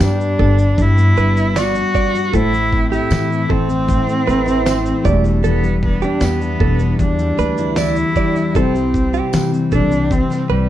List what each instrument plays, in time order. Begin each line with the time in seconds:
Already playing: steel-string acoustic guitar G2 B3 D4 G4, felt piano G3 D4 B4, clean electric guitar G4
0.00 upright bass G2, steel-string acoustic guitar G3, cello D4, snare, tambourine, shaker
0.20 steel-string acoustic guitar D4, shaker
0.39 upright bass G1, steel-string acoustic guitar B3, clean electric guitar A4, kick
0.58 steel-string acoustic guitar D4, shaker
0.78 steel-string acoustic guitar G2, upright bass G2, cello E4, kick, shaker
0.98 steel-string acoustic guitar B3, shaker
1.17 upright bass G1, steel-string acoustic guitar D4, clean electric guitar B4, shaker
1.37 shaker
1.56 steel-string acoustic guitar G3, cello F#4, clean electric guitar D5, snare, tambourine, shaker
1.75 steel-string acoustic guitar D4, shaker
1.95 steel-string acoustic guitar B3, clean electric guitar D5, kick, shaker
2.14 steel-string acoustic guitar D4, shaker
2.32 upright bass A1, steel-string acoustic guitar A2, felt piano A3 E4 C5, cello E4, clean electric guitar A4, kick, shaker
2.53 steel-string acoustic guitar A3, shaker
2.73 steel-string acoustic guitar C4, kick
2.92 steel-string acoustic guitar E4, cello E4, clean electric guitar G4, shaker
3.11 upright bass A2, steel-string acoustic guitar E3, snare, tambourine, shaker
3.30 steel-string acoustic guitar C4, shaker
3.49 upright bass A1, steel-string acoustic guitar A3, cello C4, clean electric guitar A4, kick
3.69 steel-string acoustic guitar C4, shaker
3.88 steel-string acoustic guitar A2, kick, shaker
4.07 steel-string acoustic guitar A3, shaker
4.27 upright bass A1, steel-string acoustic guitar C4, clean electric guitar B4, shaker
4.46 steel-string acoustic guitar E4, shaker
4.66 steel-string acoustic guitar E3, clean electric guitar C5, snare, tambourine, shaker
4.85 steel-string acoustic guitar C4, shaker
5.03 upright bass E1, steel-string acoustic guitar E2, felt piano G3 E4, cello A3, clean electric guitar D5, kick, shaker
5.07 felt piano D5
5.24 steel-string acoustic guitar D4, shaker
5.44 steel-string acoustic guitar E2, cello B3, clean electric guitar A4, shaker
5.63 steel-string acoustic guitar G3, shaker
5.83 cello B3, steel-string acoustic guitar D4, kick
6.02 cello D4, steel-string acoustic guitar E4, clean electric guitar G4, shaker
6.20 upright bass E2, steel-string acoustic guitar E3, cello B3, snare, tambourine, shaker
6.41 steel-string acoustic guitar D4, shaker
6.60 upright bass E1, steel-string acoustic guitar G3, clean electric guitar A4, kick
6.79 steel-string acoustic guitar D4, shaker
6.99 upright bass E2, steel-string acoustic guitar E2, cello D4, kick, shaker
7.19 steel-string acoustic guitar G3, shaker
7.38 upright bass D2, steel-string acoustic guitar D4, clean electric guitar B4, shaker
7.57 steel-string acoustic guitar E4, shaker
7.76 steel-string acoustic guitar E3, clean electric guitar D5, snare, tambourine, shaker
7.81 cello E4
7.96 steel-string acoustic guitar D4, shaker
8.15 felt piano G3 E4 D5, steel-string acoustic guitar G3, clean electric guitar D5, kick, shaker
8.35 steel-string acoustic guitar D4, shaker
8.53 upright bass C2, steel-string acoustic guitar C3, felt piano G3 E4, cello C4, clean electric guitar A4, kick, shaker
8.57 felt piano C5
8.75 steel-string acoustic guitar G3, shaker
8.94 steel-string acoustic guitar C4, kick, shaker
9.13 steel-string acoustic guitar E4, clean electric guitar G4, shaker
9.33 upright bass C3, steel-string acoustic guitar E3, snare, tambourine, shaker
9.52 steel-string acoustic guitar C4, shaker
9.71 upright bass C2, steel-string acoustic guitar G3, cello D4, clean electric guitar A4, kick, shaker
9.91 steel-string acoustic guitar C4, shaker
10.10 steel-string acoustic guitar C3, cello C4, kick, shaker
10.30 steel-string acoustic guitar G3, snare, shaker
10.49 upright bass C2, cello G3, steel-string acoustic guitar C4, clean electric guitar B4